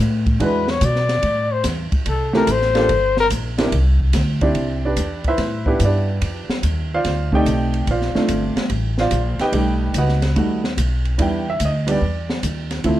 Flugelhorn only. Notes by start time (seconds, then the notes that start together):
0.44 B4
0.70 C#5
0.85 D5
1.53 C5
2.09 A4
2.36 A#4
2.51 C5
3.20 A#4